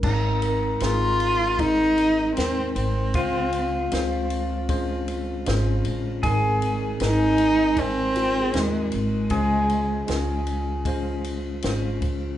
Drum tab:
CC |x-------|--------|--------|--------|
RD |-xxxxxxx|xxxxxxxx|xxxxxxxx|xxxxxxxx|
SD |--o---o-|--o---o-|--o---o-|--o---o-|
BD |o---o---|o---o---|o---o---|o---o--o|